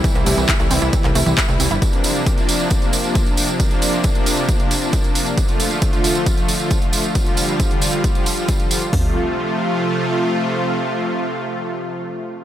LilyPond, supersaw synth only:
\new Staff \with { instrumentName = "Supersaw synth" } { \clef bass \time 4/4 \key f \major \tempo 4 = 135 <c e g e'>8 <c e g e'>8 <c e g e'>8 <c e g e'>8 <c e g e'>8 r16 <c e g e'>8 r16 <c e g e'>8 | <c f bes d'>8 <c f bes d'>8 <c f bes d'>8 <c f bes d'>8 <c f bes d'>8 r16 <c f bes d'>8 r16 <c f bes d'>8 | <c f bes d'>8 <c f bes d'>8 <c f bes d'>8 <c f bes d'>8 <c f bes d'>8 r16 <c f bes d'>8 r16 <c f bes d'>8 | <d f a f'>8 <d f a f'>8 <d f a f'>8 <d f a f'>8 <d f a f'>8 r16 <d f a f'>8 r16 <d f a f'>8 |
<d f g f'>8 <d f g f'>8 <d f g f'>8 <d f g f'>8 <d f g f'>8 r16 <d f g f'>8 r16 <d f g f'>8 | <c f a f'>1~ | <c f a f'>1 | }